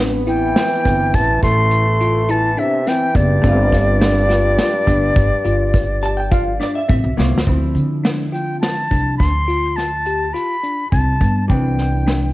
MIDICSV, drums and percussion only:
0, 0, Header, 1, 2, 480
1, 0, Start_track
1, 0, Tempo, 575264
1, 2870, Time_signature, 7, 2, 24, 8
1, 10291, End_track
2, 0, Start_track
2, 0, Title_t, "Drums"
2, 228, Note_on_c, 9, 42, 64
2, 311, Note_off_c, 9, 42, 0
2, 467, Note_on_c, 9, 38, 97
2, 467, Note_on_c, 9, 42, 73
2, 550, Note_off_c, 9, 38, 0
2, 550, Note_off_c, 9, 42, 0
2, 710, Note_on_c, 9, 38, 32
2, 710, Note_on_c, 9, 42, 54
2, 711, Note_on_c, 9, 36, 73
2, 794, Note_off_c, 9, 38, 0
2, 794, Note_off_c, 9, 42, 0
2, 795, Note_off_c, 9, 36, 0
2, 951, Note_on_c, 9, 36, 105
2, 952, Note_on_c, 9, 42, 75
2, 1034, Note_off_c, 9, 36, 0
2, 1035, Note_off_c, 9, 42, 0
2, 1191, Note_on_c, 9, 36, 68
2, 1192, Note_on_c, 9, 38, 32
2, 1192, Note_on_c, 9, 42, 58
2, 1274, Note_off_c, 9, 36, 0
2, 1275, Note_off_c, 9, 38, 0
2, 1275, Note_off_c, 9, 42, 0
2, 1426, Note_on_c, 9, 42, 76
2, 1510, Note_off_c, 9, 42, 0
2, 1672, Note_on_c, 9, 42, 58
2, 1755, Note_off_c, 9, 42, 0
2, 1907, Note_on_c, 9, 42, 80
2, 1990, Note_off_c, 9, 42, 0
2, 2150, Note_on_c, 9, 42, 61
2, 2233, Note_off_c, 9, 42, 0
2, 2395, Note_on_c, 9, 38, 29
2, 2395, Note_on_c, 9, 42, 75
2, 2479, Note_off_c, 9, 38, 0
2, 2479, Note_off_c, 9, 42, 0
2, 2629, Note_on_c, 9, 36, 82
2, 2631, Note_on_c, 9, 42, 62
2, 2712, Note_off_c, 9, 36, 0
2, 2715, Note_off_c, 9, 42, 0
2, 2869, Note_on_c, 9, 36, 98
2, 2872, Note_on_c, 9, 42, 78
2, 2952, Note_off_c, 9, 36, 0
2, 2955, Note_off_c, 9, 42, 0
2, 3107, Note_on_c, 9, 36, 70
2, 3109, Note_on_c, 9, 38, 32
2, 3109, Note_on_c, 9, 42, 60
2, 3191, Note_off_c, 9, 36, 0
2, 3192, Note_off_c, 9, 38, 0
2, 3192, Note_off_c, 9, 42, 0
2, 3349, Note_on_c, 9, 38, 105
2, 3349, Note_on_c, 9, 42, 84
2, 3433, Note_off_c, 9, 38, 0
2, 3433, Note_off_c, 9, 42, 0
2, 3586, Note_on_c, 9, 38, 36
2, 3586, Note_on_c, 9, 42, 60
2, 3669, Note_off_c, 9, 38, 0
2, 3669, Note_off_c, 9, 42, 0
2, 3825, Note_on_c, 9, 38, 95
2, 3825, Note_on_c, 9, 42, 79
2, 3909, Note_off_c, 9, 38, 0
2, 3909, Note_off_c, 9, 42, 0
2, 4065, Note_on_c, 9, 42, 58
2, 4066, Note_on_c, 9, 36, 74
2, 4148, Note_off_c, 9, 42, 0
2, 4149, Note_off_c, 9, 36, 0
2, 4307, Note_on_c, 9, 36, 107
2, 4309, Note_on_c, 9, 42, 79
2, 4391, Note_off_c, 9, 36, 0
2, 4393, Note_off_c, 9, 42, 0
2, 4548, Note_on_c, 9, 42, 59
2, 4631, Note_off_c, 9, 42, 0
2, 4789, Note_on_c, 9, 36, 99
2, 4789, Note_on_c, 9, 42, 71
2, 4872, Note_off_c, 9, 36, 0
2, 4873, Note_off_c, 9, 42, 0
2, 5032, Note_on_c, 9, 42, 58
2, 5116, Note_off_c, 9, 42, 0
2, 5270, Note_on_c, 9, 36, 96
2, 5271, Note_on_c, 9, 42, 79
2, 5354, Note_off_c, 9, 36, 0
2, 5354, Note_off_c, 9, 42, 0
2, 5514, Note_on_c, 9, 38, 34
2, 5514, Note_on_c, 9, 42, 58
2, 5597, Note_off_c, 9, 38, 0
2, 5597, Note_off_c, 9, 42, 0
2, 5752, Note_on_c, 9, 36, 96
2, 5755, Note_on_c, 9, 42, 73
2, 5836, Note_off_c, 9, 36, 0
2, 5838, Note_off_c, 9, 42, 0
2, 5999, Note_on_c, 9, 38, 61
2, 6083, Note_off_c, 9, 38, 0
2, 6155, Note_on_c, 9, 38, 89
2, 6233, Note_on_c, 9, 36, 92
2, 6236, Note_on_c, 9, 42, 67
2, 6238, Note_off_c, 9, 38, 0
2, 6316, Note_off_c, 9, 36, 0
2, 6320, Note_off_c, 9, 42, 0
2, 6474, Note_on_c, 9, 42, 55
2, 6557, Note_off_c, 9, 42, 0
2, 6716, Note_on_c, 9, 38, 89
2, 6716, Note_on_c, 9, 42, 67
2, 6800, Note_off_c, 9, 38, 0
2, 6800, Note_off_c, 9, 42, 0
2, 6959, Note_on_c, 9, 42, 59
2, 7043, Note_off_c, 9, 42, 0
2, 7197, Note_on_c, 9, 38, 93
2, 7197, Note_on_c, 9, 42, 75
2, 7281, Note_off_c, 9, 38, 0
2, 7281, Note_off_c, 9, 42, 0
2, 7435, Note_on_c, 9, 36, 67
2, 7436, Note_on_c, 9, 42, 53
2, 7519, Note_off_c, 9, 36, 0
2, 7519, Note_off_c, 9, 42, 0
2, 7676, Note_on_c, 9, 36, 97
2, 7681, Note_on_c, 9, 38, 31
2, 7681, Note_on_c, 9, 42, 79
2, 7759, Note_off_c, 9, 36, 0
2, 7764, Note_off_c, 9, 38, 0
2, 7764, Note_off_c, 9, 42, 0
2, 7921, Note_on_c, 9, 42, 51
2, 8004, Note_off_c, 9, 42, 0
2, 8157, Note_on_c, 9, 38, 28
2, 8157, Note_on_c, 9, 42, 72
2, 8241, Note_off_c, 9, 38, 0
2, 8241, Note_off_c, 9, 42, 0
2, 8389, Note_on_c, 9, 42, 55
2, 8473, Note_off_c, 9, 42, 0
2, 8639, Note_on_c, 9, 42, 74
2, 8722, Note_off_c, 9, 42, 0
2, 8874, Note_on_c, 9, 42, 52
2, 8957, Note_off_c, 9, 42, 0
2, 9113, Note_on_c, 9, 42, 62
2, 9114, Note_on_c, 9, 36, 87
2, 9196, Note_off_c, 9, 42, 0
2, 9197, Note_off_c, 9, 36, 0
2, 9351, Note_on_c, 9, 42, 56
2, 9353, Note_on_c, 9, 36, 75
2, 9434, Note_off_c, 9, 42, 0
2, 9437, Note_off_c, 9, 36, 0
2, 9591, Note_on_c, 9, 42, 64
2, 9594, Note_on_c, 9, 36, 94
2, 9674, Note_off_c, 9, 42, 0
2, 9677, Note_off_c, 9, 36, 0
2, 9834, Note_on_c, 9, 38, 28
2, 9834, Note_on_c, 9, 42, 50
2, 9917, Note_off_c, 9, 38, 0
2, 9917, Note_off_c, 9, 42, 0
2, 10076, Note_on_c, 9, 38, 98
2, 10076, Note_on_c, 9, 42, 71
2, 10160, Note_off_c, 9, 38, 0
2, 10160, Note_off_c, 9, 42, 0
2, 10291, End_track
0, 0, End_of_file